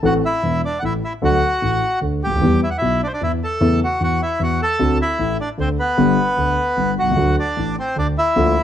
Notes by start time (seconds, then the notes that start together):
0.03 A1 A2 E3 A3 C4 F#4 A4 F#5
0.25 E4 E5
0.43 E1 E2
0.65 D4 D5
0.79 A1 A2 F#5
0.85 E4 E5
1.04 E4 E5
1.22 D2 D3 F#3 A3 D4 F#4 A4 F#5
1.62 A1 A2
2.01 D2 D3
2.24 C#2 G4 G5
2.31 D2
2.36 D#2
2.41 E2 E3 G3 B3 G4
2.63 E4 E5
2.70 F#5
2.78 B2 E4 E5
2.82 B1
3.03 D4 C5 D5
3.13 D4 D5
3.21 E2 E3 E4 E5
3.44 A4 A5
3.61 E2 C#3 E3 A3 B3 E4
3.84 F#4 F#5
4.00 E2 E3 F#4 F#5
4.22 E4 E5
4.40 E2 E3 F#4
4.44 F#5
4.62 A4 A5
4.79 D2 D3 A3 C4 F#4
5.01 E4 E5
5.19 A1 A2
5.40 D4 D5
5.58 D2 D3 C4 C5
5.79 B3 B4
5.97 G1 G2 D3 G3 B3 G4
6.37 D2 D3
6.77 G1 G2
6.99 B1 F#4 F#5
7.07 C2
7.11 C#2
7.16 D2 D3 F#3 A3 F#4
7.39 D4 D5
7.57 A1 A2
7.79 C4 C5
7.96 D2 D3 D4 D5
8.18 E4 E5
8.36 D2 D3 F3 A#3 F4